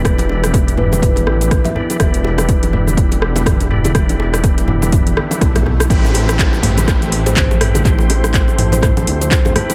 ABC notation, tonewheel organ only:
X:1
M:4/4
L:1/8
Q:"Swing 16ths" 1/4=123
K:Am
V:1 name="Tonewheel organ"
[DEGB]6- [DEGB] [DEGB] | [DEGB]6- [DEGB] [DEGB] | [DEGB]6- [DEGB] z | [CEGB]6- [CEGB] [CEGB] |
[CEGc]6- [CEGc] [CEGB] |]